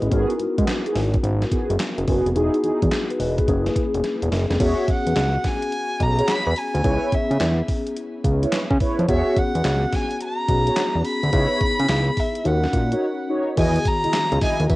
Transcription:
Already playing: E4 G#4 B4 D#5
0.02 A1 C#4 E4, closed hi-hat
0.10 G#1 B3 D#4 F#4 G#4 A#4, kick, closed hi-hat
0.30 closed hi-hat
0.39 G#2, closed hi-hat
0.58 G#2 B3 F#4 G#4, kick, closed hi-hat
0.67 snare, clap, closed hi-hat
0.86 B3 F#4 G#4, closed hi-hat
0.95 G#1, snare, open hi-hat
1.14 kick, closed hi-hat
1.23 G#1, closed hi-hat
1.42 snare, closed hi-hat
1.51 B3 F#4 G#4, kick, closed hi-hat
1.70 F#1, closed hi-hat
1.80 snare, clap, closed hi-hat
1.98 F#1, closed hi-hat
2.07 F#1 B3 F#4 G#4, kick, open hi-hat
2.26 F1, closed hi-hat
2.34 E1 B3 D#4 E4 F#4 G#4, closed hi-hat
2.54 closed hi-hat
2.64 E2 D#4 E4 G#4, closed hi-hat
2.82 E2, kick, closed hi-hat
2.92 snare, clap, closed hi-hat
3.10 G#4 B4, closed hi-hat
3.20 E1 B4 D#5, open hi-hat
3.38 G#4 B4, kick, closed hi-hat
3.46 F#1 A#3 C#4 E4 G#4, kick, closed hi-hat
3.66 snare, closed hi-hat
3.76 kick, closed hi-hat
3.94 E1, closed hi-hat
4.04 snare, closed hi-hat
4.22 E1, closed hi-hat
4.32 F#1, snare, open hi-hat
4.50 F1, snare, closed hi-hat
4.59 E1 B3 C#4 F#4 G#4 C#5 E5, kick, closed hi-hat, crash
4.88 E2 F#5, kick, closed hi-hat
5.07 E2, closed hi-hat
5.16 C#2, snare, clap, closed hi-hat
5.44 G#5, kick, snare, open hi-hat
5.62 closed hi-hat
5.72 closed hi-hat
6.00 B1 A#5, kick, closed hi-hat
6.18 F#4 G#4 C#5, closed hi-hat
6.28 B5, snare, clap, closed hi-hat
6.47 E2
6.56 G#5, open hi-hat
6.75 D2, closed hi-hat
6.83 C#2 B3 C#4 E4 G#4 B4 C#5, kick, closed hi-hat
7.12 C#3 E5, kick, closed hi-hat
7.31 C#3, closed hi-hat
7.40 E2, snare, clap, closed hi-hat
7.68 kick, open hi-hat
7.87 closed hi-hat
7.96 closed hi-hat
8.24 C#2, kick, closed hi-hat
8.43 E4 B4 C#5, closed hi-hat
8.52 snare, clap, closed hi-hat
8.71 C#3, kick
8.80 E4 B4 C#5, kick, open hi-hat
8.99 F2, closed hi-hat
9.07 E1 B3 C#4 F#4 G#4 C#5 E5, kick, closed hi-hat
9.36 E2 F#5, kick, closed hi-hat
9.55 E2, closed hi-hat
9.64 C#2, snare, clap, closed hi-hat
9.93 G#5, kick, snare, open hi-hat
10.11 closed hi-hat
10.21 A#5, closed hi-hat
10.48 B1 B3 C#4 F#4 G#4, kick, closed hi-hat
10.67 F#4 G#4 C#5, closed hi-hat
10.77 snare, clap, closed hi-hat
10.95 E2
11.05 B5, open hi-hat
11.23 D2, closed hi-hat
11.32 C#2 B3 D#4 E4 G#4 B4 C#5, kick, closed hi-hat
11.61 C#3, kick, closed hi-hat
11.79 C#3, closed hi-hat
11.89 C#2, snare, clap, closed hi-hat
12.17 E5, kick, open hi-hat
12.35 closed hi-hat
12.44 D#2 C#4 D#4 F#4 A#4 F#5, closed hi-hat
12.64 snare
12.73 A#2, kick, closed hi-hat
12.92 D#4 F#4 C#5, closed hi-hat
13.29 D#4 F#4 C#5
13.56 E2 D#3 B3 E4 F#4 G#4 D#5 G#5, kick, closed hi-hat, crash
13.76 closed hi-hat
13.85 A#5, kick, closed hi-hat, tambourine
14.04 C#2 E4 G#4 D#5, closed hi-hat
14.13 snare, clap, closed hi-hat, tambourine
14.32 C#2, closed hi-hat
14.41 E4 G#4 D#5 G#5, kick, snare, open hi-hat, tambourine
14.60 D#2, closed hi-hat
14.70 E2 E5, kick, closed hi-hat, tambourine

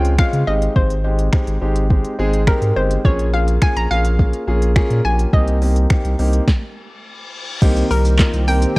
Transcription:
Already playing: C#2 G#3 C4 C#4 F4 G5
0.05 closed hi-hat
0.19 G#3 C4 C#4 F4 F5, finger snap, kick
0.33 C#3, closed hi-hat
0.47 G#1 G#3 C4 D#4 G4 D#5
0.62 closed hi-hat
0.76 G#1 C5, kick
0.90 closed hi-hat
1.04 G#3 C4 D#4 G4
1.19 closed hi-hat
1.33 G#3 C4 D#4 G4, finger snap, kick
1.47 G#1, closed hi-hat
1.62 G#1 G#3 C4 D#4 G4
1.76 closed hi-hat
1.90 G#3 C4 D#4 G4, kick
2.05 closed hi-hat
2.19 G#1 G#3 C4 D#4 G#4
2.33 closed hi-hat
2.47 G#3 C4 D#4 G4 A#4, finger snap, kick
2.62 G#2, closed hi-hat
2.76 G1 G#3 C4 D#4 G4 C5
2.91 closed hi-hat
3.04 A#1 A#3 C#4 F4 G#4 C#5, kick
3.19 closed hi-hat
3.33 A#3 C#4 F4 G#4 F5
3.48 closed hi-hat
3.62 A#3 C#4 F4 G#4 G#5, finger snap, kick
3.76 A#1 A#5, closed hi-hat
3.90 A#1 A#3 C#4 F4 G#4 F5
4.05 closed hi-hat
4.19 A#3 C#4 F4 G#4, kick
4.33 closed hi-hat
4.47 A#1 A#3 C#4 F4 G#4
4.62 closed hi-hat
4.76 A#3 C#4 F4 G#4, finger snap, kick
4.90 A#2, closed hi-hat
5.04 A#1 A#3 C#4 F4 G4 G#5
5.19 closed hi-hat
5.33 C2 A#3 C4 D#4 G4 D#5, kick
5.48 closed hi-hat
5.62 A#3 C4 D#4 G4, open hi-hat
5.76 closed hi-hat
5.90 A#3 C4 D#4 G4, finger snap, kick
6.05 C2, closed hi-hat
6.19 C2 A#3 C4 D#4 G4, open hi-hat
6.33 closed hi-hat
6.47 kick, snare, reverse cymbal
7.62 C2 D#3 A#3 C4 D#4 G4, kick, crash, shaker
7.76 closed hi-hat, shaker
7.90 C2 A#3 C4 D#4 G4 A#4, open hi-hat, shaker
8.05 closed hi-hat, shaker
8.19 A#3 C4 D#4 F4, kick, snare, clap, shaker
8.33 C2, closed hi-hat, shaker
8.47 A#3 C4 D#4 A#4 G5, open hi-hat, shaker
8.62 closed hi-hat, shaker

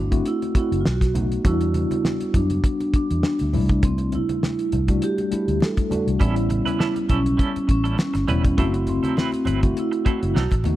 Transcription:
Already playing: G1 A3 C4 D4 E4 F#4
0.11 A3 C4 E4 F#4, kick, closed hi-hat, high conga
0.25 E4, closed hi-hat, muted conga
0.42 closed hi-hat, muted conga
0.55 A3 C4 E4 F#4, muted fingered electric bass stroke, kick, closed hi-hat
0.72 F#1, closed hi-hat
0.81 F4
0.85 B1 F#4, snare
1.01 kick, snare, closed hi-hat
1.14 A3 B3 D#4 F#4, closed hi-hat, high conga, low conga
1.32 closed hi-hat
1.45 E2 G3 B3 D4 E4 F#4, kick, closed hi-hat, muted conga, low conga
1.61 closed hi-hat, muted conga
1.74 closed hi-hat, high conga
1.91 closed hi-hat, high conga
2.05 snare, muted conga, high conga
2.21 closed hi-hat, muted conga
2.34 F#2 D4, kick, closed hi-hat, low conga
2.50 closed hi-hat, high conga
2.64 kick, closed hi-hat
2.80 closed hi-hat, muted conga
2.94 D4, muted fingered electric bass stroke, kick, closed hi-hat
3.11 E2, closed hi-hat
3.23 snare, muted conga
3.39 D2, closed hi-hat, muted conga
3.53 C2 G3 A3 D4 E4, open hi-hat, high conga, low conga
3.69 kick, closed hi-hat
3.83 C4, kick, closed hi-hat, muted conga, low conga
3.98 closed hi-hat, muted conga
4.12 E4, closed hi-hat, high conga
4.29 closed hi-hat, high conga
4.43 snare, muted conga, high conga
4.59 closed hi-hat
4.72 C2, closed hi-hat, low conga
4.88 G3 A3 D4 F#4, kick, closed hi-hat, high conga
5.02 G4, closed hi-hat, muted conga
5.18 closed hi-hat, muted conga
5.31 G3 A3 D4 E4, muted fingered electric bass stroke, closed hi-hat
5.48 D2, closed hi-hat
5.60 A4, snare, muted conga
5.77 kick, closed hi-hat, muted conga
5.90 G3 A3 D4 F#4, muted fingered electric bass stroke, closed hi-hat, high conga, low conga
6.07 C2, closed hi-hat
6.20 A1 G3 B3 C#4 E4 A4, kick, closed hi-hat, muted conga, low conga
6.36 muted clean electric guitar stroke, closed hi-hat
6.50 muted clean electric guitar stroke, closed hi-hat, high conga
6.65 G3 C#4 E4 B4, closed hi-hat, high conga
6.79 G3 C#4 E4 A4, snare, high conga
6.95 muted clean electric guitar stroke, closed hi-hat, muted conga
7.09 B1 G3 C#4 E4 A4, kick, closed hi-hat, low conga
7.25 muted clean electric guitar stroke, closed hi-hat, high conga
7.37 G3 C#4 E4 A4, kick, closed hi-hat, muted conga
7.56 muted fingered electric bass stroke, closed hi-hat, muted conga
7.68 A1 C#4, muted clean electric guitar stroke, kick, closed hi-hat
7.84 G3 C#4 E4 A4, closed hi-hat
7.97 muted clean electric guitar stroke, snare, muted conga
8.14 G1, muted clean electric guitar stroke, snare, closed hi-hat, muted conga
8.28 E1 G3 B3 C#4 E4 B4, closed hi-hat, high conga, low conga
8.44 muted clean electric guitar stroke, kick, closed hi-hat
8.58 F#1 F#3 A3 C4 E4 F#4 A4, kick, closed hi-hat, low conga
8.74 muted clean electric guitar stroke, closed hi-hat, muted conga
8.87 C4, muted clean electric guitar stroke, closed hi-hat, high conga
9.03 F#3 C4 E4 A4, closed hi-hat, high conga
9.16 F#3 C4 E4 B4, snare, muted conga, high conga
9.32 closed hi-hat, muted conga
9.45 G1 F#3 C4 E4 B4, closed hi-hat, low conga
9.61 A3 C4 E4 F#4, muted clean electric guitar stroke, kick, closed hi-hat, high conga
9.77 E4, closed hi-hat
9.92 muted clean electric guitar stroke, closed hi-hat
10.05 F#3 A3 C4 E4 F#4 A4, muted fingered electric bass stroke, kick, closed hi-hat
10.20 F#1, muted clean electric guitar stroke, closed hi-hat
10.34 B1 F#3 B3 D#4 A4, snare
10.39 F#4
10.51 A1, kick, closed hi-hat, muted conga
10.64 D#2 A3 B3 D#4 F#4, muted clean electric guitar stroke, closed hi-hat, high conga, low conga

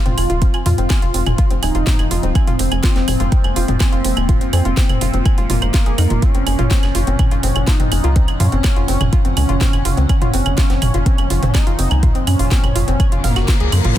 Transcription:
Already playing: F2 G#2 C3 F3 C4 F4
0.06 F1 C4, closed hi-hat, mid tom
0.18 F1 G#5, open hi-hat, claves
0.30 D#1 F4, closed hi-hat
0.42 C4, kick, closed hi-hat
0.54 F1 G#5, closed hi-hat, claves
0.66 F2 F4, mid tom, open hi-hat
0.78 F1 C4, closed hi-hat
0.90 G#5, kick, snare, closed hi-hat, claves
1.02 F1 F4, closed hi-hat
1.14 F1 C4, open hi-hat
1.26 F1 G#5, closed hi-hat, mid tom, claves
1.38 F4, kick, closed hi-hat
1.51 F1 C4, closed hi-hat
1.63 D#1 D#4 G#5, open hi-hat, claves
1.75 F1 F4, closed hi-hat
1.87 C4, kick, snare, closed hi-hat, mid tom
1.99 F1 G#5, closed hi-hat, claves
2.11 F1 F4, open hi-hat
2.23 D#1 C4, closed hi-hat
2.35 A#3 C4 G#5, kick, closed hi-hat, claves
2.47 F1 F4, closed hi-hat, mid tom
2.59 F1 C4, open hi-hat
2.72 F1 G#5, closed hi-hat, claves
2.84 F4, kick, snare, closed hi-hat
2.96 F1 C4, snare, closed hi-hat
3.08 F1 G#5, mid tom, open hi-hat, claves
3.20 F1 F4, closed hi-hat
3.32 C4, kick, closed hi-hat
3.44 F1 G#5, closed hi-hat, claves
3.56 F1 F4, open hi-hat
3.68 F1 C4, closed hi-hat, mid tom
3.80 C4 G#5, kick, snare, closed hi-hat, claves
3.93 F1 F4, closed hi-hat
4.05 F1 C4, open hi-hat
4.17 D#1 G#5, closed hi-hat, claves
4.29 F4, kick, closed hi-hat, mid tom
4.41 F1 C4, closed hi-hat
4.53 F2 C4 G#5, open hi-hat, claves
4.65 F1 F4, closed hi-hat
4.77 C4, kick, snare, closed hi-hat
4.89 F1 G#5, closed hi-hat, mid tom, claves
5.01 F1 F4, open hi-hat
5.14 F1 C4, closed hi-hat
5.26 G#5, kick, closed hi-hat, claves
5.38 F1 F4, closed hi-hat
5.50 F1 A#3 F4, mid tom, open hi-hat
5.62 F1 C5, closed hi-hat, claves
5.74 F4, kick, snare, closed hi-hat
5.86 F1 G#4, closed hi-hat
5.98 F2 D#4, open hi-hat, claves
6.10 F1 F4, closed hi-hat, mid tom
6.22 A#2 C#3 C#4 F4 F#5, kick, closed hi-hat
6.35 F#1 C4, closed hi-hat
6.47 F#1 G#5, open hi-hat, claves
6.59 F#1 F4, closed hi-hat, mid tom
6.71 C4, kick, snare, closed hi-hat
6.83 F#1 G#5, snare, closed hi-hat, claves
6.95 F#1 F4, open hi-hat
7.07 F#1 C4, closed hi-hat
7.19 G#5, kick, closed hi-hat, mid tom, claves
7.31 F#1 F4, closed hi-hat
7.43 F#1 C4, open hi-hat
7.56 F#1 G#5, closed hi-hat, claves
7.67 D#4 F4, kick, snare, closed hi-hat
7.80 F#1 C4, closed hi-hat, mid tom
7.92 F#1 G#5, open hi-hat, claves
8.04 C#2 F4, closed hi-hat
8.16 C4, kick, closed hi-hat
8.28 F#1 G#5, closed hi-hat, claves
8.40 F#2 C#4 F4, mid tom, open hi-hat
8.52 F#1 C4, closed hi-hat
8.64 G#5, kick, snare, closed hi-hat, claves
8.76 F#1 F4, closed hi-hat
8.88 F#1 C4, open hi-hat
9.01 F#1 G#5, closed hi-hat, mid tom, claves
9.13 F4, kick, closed hi-hat
9.25 F#1 C4, closed hi-hat
9.37 C#2 C#4 G#5, open hi-hat, claves
9.49 F#1 F4, closed hi-hat
9.61 C4, kick, snare, closed hi-hat, mid tom
9.73 F#1 G#5, closed hi-hat, claves
9.85 F#1 F4, open hi-hat
9.97 C#2 C4, closed hi-hat
10.09 C#4 C5 G#5, kick, closed hi-hat, claves
10.22 F#1 F4, closed hi-hat, mid tom
10.34 F#1 C4, open hi-hat
10.46 F#1 G#5, closed hi-hat, claves
10.58 F4, kick, snare, closed hi-hat
10.70 F#1 C4, snare, closed hi-hat
10.82 F#1 G#5, mid tom, open hi-hat, claves
10.94 F#1 F4, closed hi-hat
11.06 C4, kick, closed hi-hat
11.18 F#1 G#5, closed hi-hat, claves
11.30 F#1 F4, open hi-hat
11.43 F#1 C4, closed hi-hat, mid tom
11.55 D#4 G#5, kick, snare, closed hi-hat, claves
11.67 F#1 F4, closed hi-hat
11.79 F#1 C4, open hi-hat
11.91 C#2 G#5, closed hi-hat, claves
12.03 F4, kick, closed hi-hat, mid tom
12.15 F#1 C4, closed hi-hat
12.27 F#2 C#4 G#5, open hi-hat, claves
12.39 F#1 F4, open hi-hat
12.51 C4, kick, snare, closed hi-hat
12.64 F#1 G#5, closed hi-hat, mid tom, claves
12.76 F#1 F4, open hi-hat
12.88 F#1 C4, closed hi-hat
13.00 G#5, kick, closed hi-hat, reverse cymbal, claves
13.12 F#1 F4, closed hi-hat
13.24 F#1 A#3 F5, mid tom, open hi-hat
13.36 F#1 F#4, snare, closed hi-hat, claves
13.48 F4, kick, snare, closed hi-hat
13.60 C#2 G#4, closed hi-hat
13.72 F#2 C5, open hi-hat, claves
13.85 G#1 F4, closed hi-hat, mid tom

